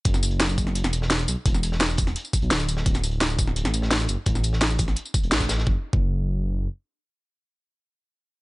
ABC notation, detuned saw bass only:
X:1
M:4/4
L:1/16
Q:1/4=171
K:Emix
V:1 name="Detuned saw bass" clef=bass
F,,,8- F,,, E,,,4- E,,, B,,, z | E,,,8 z3 B,,, D,,,4 | D,,,8- D,,, A,,,4- A,,, F,,, z | A,,,8 z3 E,,, A,,,4 |
F,,, z2 F,,,8- F,,, z4 | z16 |]